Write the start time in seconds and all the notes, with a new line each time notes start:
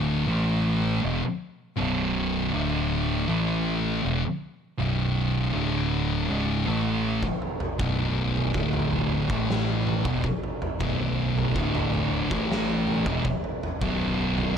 Already playing: D1 D2 A2 D3
0.27 A1 A2 E3 A3
1.02 E1 E2 B2
1.76 B0 B1 F#2 B2
2.53 D1 D2 A2 D3
3.28 A1 A2 E3 A3
4.03 E1 E2 B2
4.79 B0 B1 F#2 B2
5.53 D1 D2 A2 D3
6.29 C#1 C#2 G#2 C#3
6.67 A1 A2 E3 A3
7.23 kick, floor tom
7.42 floor tom
7.60 floor tom, mid tom
7.79 B0 B1 F#2 B2, kick, floor tom
8.36 floor tom
8.54 D1 D2 A2 D3, kick
8.73 floor tom, mid tom
8.91 floor tom
9.29 A1 A2 E3 A3, kick
9.50 snare
9.87 floor tom
10.05 E1 E2 B2, kick, floor tom, mid tom
10.24 kick, floor tom
10.43 floor tom
10.62 floor tom, mid tom
10.80 B0 B1 F#2 B2, kick, floor tom
11.38 floor tom
11.56 D1 D2 A2 D3, kick
11.75 floor tom, mid tom
11.94 floor tom
12.31 A1 A2 E3 A3, kick
12.52 snare
12.87 floor tom
13.06 E1 E2 B2, kick, floor tom, mid tom
13.25 kick, floor tom
13.44 floor tom
13.63 floor tom, mid tom
13.81 B0 B1 F#2 B2, kick, floor tom
14.38 floor tom